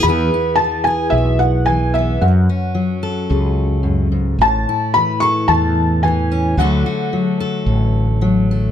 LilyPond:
<<
  \new Staff \with { instrumentName = "Felt piano" } { \time 4/4 \key e \mixolydian \tempo 4 = 110 b''4 a''8 gis''8 e''8 fis''8 gis''8 e''8 | fis''2 r2 | a''4 b''8 cis'''8 a''4 gis''4 | fis''2. r4 | }
  \new Staff \with { instrumentName = "Steel-string acoustic guitar" } { \clef bass \time 4/4 \key e \mixolydian << { <e b e' gis'>8 e'4 gis'2 b8 | r8 cis'4 a'2~ a'8 | r8 e'4 a'2 cis'8 | <fis a fis' a'>8 fis'4 a'2 a8 | } \\ { e,4 e4 b,4 e4 | fis,4 fis4 cis4 fis,8 gis,8 | a,4 e4 e4 e4 | d4 fis4 a,4 fis4 | } >> }
  \new Staff \with { instrumentName = "Fretless electric bass" } { \clef bass \time 4/4 \key e \mixolydian e,8 r4. b,,2 | fis,8 r4. cis,2 | a,,8 r4. e,2 | d,8 r4. a,,2 | }
>>